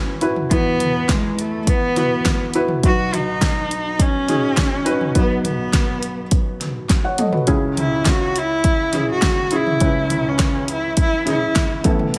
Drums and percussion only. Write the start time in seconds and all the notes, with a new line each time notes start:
0.21 closed hi-hat
0.36 floor tom
0.51 kick, closed hi-hat
0.80 closed hi-hat, floor tom
1.09 kick, snare, clap, closed hi-hat
1.39 closed hi-hat
1.67 kick, closed hi-hat
1.96 snare, closed hi-hat, floor tom
2.25 kick, snare, clap, closed hi-hat
2.54 closed hi-hat
2.68 floor tom
2.83 kick, closed hi-hat
3.13 closed hi-hat, floor tom
3.41 kick, snare, clap, closed hi-hat
3.71 closed hi-hat
3.99 kick, closed hi-hat
4.28 snare, closed hi-hat, floor tom
4.57 kick, snare, clap, closed hi-hat
4.86 closed hi-hat
5.01 floor tom
5.15 kick, closed hi-hat
5.44 closed hi-hat, floor tom
5.73 kick, snare, clap, closed hi-hat
6.03 closed hi-hat
6.31 kick, closed hi-hat
6.61 snare, closed hi-hat, floor tom
6.89 kick, snare, clap, closed hi-hat
7.18 closed hi-hat, mid tom
7.33 floor tom
7.47 kick, closed hi-hat
7.77 closed hi-hat, floor tom
8.05 kick, snare, clap, closed hi-hat
8.36 closed hi-hat
8.64 kick, closed hi-hat
8.93 snare, closed hi-hat, floor tom
9.22 kick, snare, clap, closed hi-hat
9.51 closed hi-hat
9.67 floor tom
9.80 kick, closed hi-hat
10.10 closed hi-hat, floor tom
10.39 kick, snare, clap, closed hi-hat
10.68 closed hi-hat
10.97 kick, closed hi-hat
11.27 snare, closed hi-hat, floor tom
11.56 kick, snare, clap, closed hi-hat
11.84 kick, closed hi-hat
11.99 floor tom
12.14 closed hi-hat